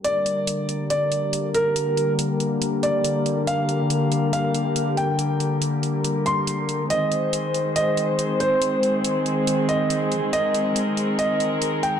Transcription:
<<
  \new Staff \with { instrumentName = "Grand piano" } { \time 4/4 \key g \phrygian \tempo 4 = 140 d''2 d''4. bes'8~ | bes'4 r4. d''4. | f''2 f''4. g''8~ | g''4 r4. c'''4. |
ees''2 ees''4. c''8~ | c''4 r4. ees''4. | ees''2 ees''4. g''8 | }
  \new Staff \with { instrumentName = "String section" } { \time 4/4 \key g \phrygian << { bes'1~ | bes'1~ | bes'1~ | bes'1 |
c''1~ | c''1 | bes'1 | } \\ { <d g bes g'>1~ | <d g bes g'>1~ | <d g bes g'>1~ | <d g bes g'>1 |
<ees aes c' aes'>1~ | <ees aes c' aes'>1~ | <ees aes c' aes'>1 | } >> }
  \new DrumStaff \with { instrumentName = "Drums" } \drummode { \time 4/4 hh8 hh8 hh8 hh8 hh8 hh8 hh8 hh8 | hh8 hh8 hh8 hh8 hh8 hh8 hh8 hh8 | hh8 hh8 hh8 hh8 hh8 hh8 hh8 hh8 | hh8 hh8 hh8 hh8 hh8 hh8 hh8 hh8 |
hh8 hh8 hh8 hh8 hh8 hh8 hh8 hh8 | hh8 hh8 hh8 hh8 hh8 hh8 hh8 hh8 | hh8 hh8 hh8 hh8 hh8 hh8 hh8 hh8 | }
>>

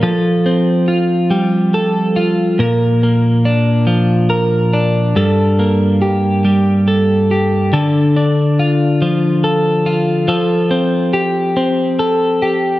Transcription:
\new Staff \with { instrumentName = "Clean electric guitar" } { \time 6/8 \key f \major \tempo 4. = 47 <f a'>8 c'8 f'8 g8 a'8 f'8 | <bes, bes'>8 bes8 d'8 f8 bes'8 d'8 | <g, a'>8 bes8 g'8 g8 a'8 g'8 | <d a'>8 d'8 f'8 f8 a'8 f'8 |
<f a'>8 c'8 g'8 c'8 a'8 g'8 | }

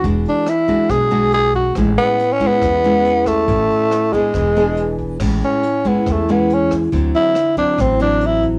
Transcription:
<<
  \new Staff \with { instrumentName = "Tenor saxophone" } { \time 4/4 \key a \major \tempo 4 = 139 r8 d'8 e'4 gis'4 gis'8 fis'8 | r8 b8~ \tuplet 3/2 { b8 cis'8 b8~ } b4. a8~ | a4. gis2 r8 | r8 cis'4 b8 a8 b8 cis'8 r8 |
r8 e'4 d'8 c'8 d'8 e'8 r8 | }
  \new Staff \with { instrumentName = "Nylon-string guitar" } { \time 4/4 \key a \major << { <gis d' fis'>4 r8 <gis d' fis'>4 <gis d' fis'>4. | <gis cis' e'>4 r8 <gis cis' e'>4 <gis cis' e'>4. | <cis' e'>4. <b d' gis'>4 <b d' gis'>4. | <gis cis' e'>4 r8 <gis cis' e'>4 <gis cis' e'>4. |
<fis c' e'>4 r8 <fis c' e'>4 <fis c' e'>4. | } \\ { e2 b,2 | a,2 e2 | a,2 e2 | a,2 e2 |
d2 a,2 | } >> }
  \new Staff \with { instrumentName = "Upright bass" } { \clef bass \time 4/4 \key a \major e,,8 r4. b,,2 | a,,8 r4. e,2 | a,,8 r4. e,,2 | a,,8 r4. e,2 |
d,8 r4. a,,2 | }
  \new DrumStaff \with { instrumentName = "Drums" } \drummode { \time 4/4 <hh bd>8 hh8 <hh ss>8 <hh bd>8 <hh bd ss>8 hh8 hh8 <hh bd>8 | <hh bd ss>8 hh8 hh8 <hh bd>8 <hh bd ss>8 hh8 hh8 <hh bd ss>8 | <hh bd>8 hh8 <hh ss>8 <hh bd>8 <hh bd ss>8 hh8 hh8 <hh bd>8 | <cymc bd ss>8 hh8 hh8 <hh bd>8 <hh bd ss>8 hh8 hh8 <hh bd ss>8 |
<hh bd>8 hh8 <hh ss>8 <hh bd>8 <hh bd ss>8 hh8 hh8 <hh bd>8 | }
>>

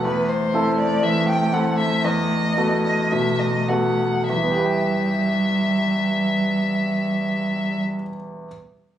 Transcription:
<<
  \new Staff \with { instrumentName = "Violin" } { \time 4/4 \key e \minor \tempo 4 = 102 b'8 c''4 d''8 e''8 g''8 fis''8 e''8 | dis''4. dis''8 e''8 dis''8 fis''4 | e''1~ | e''1 | }
  \new Staff \with { instrumentName = "Grand piano" } { \time 4/4 \key e \minor e,4 <c' e' a'>4 e4 <c' e' a'>4 | e,4 <b fis' a'>4 b,4 <b fis' a'>4 | <e, e b g' b' g''>1~ | <e, e b g' b' g''>1 | }
  \new Staff \with { instrumentName = "Cello" } { \clef bass \time 4/4 \key e \minor a1~ | a2.~ a8 r8 | g1~ | g1 | }
>>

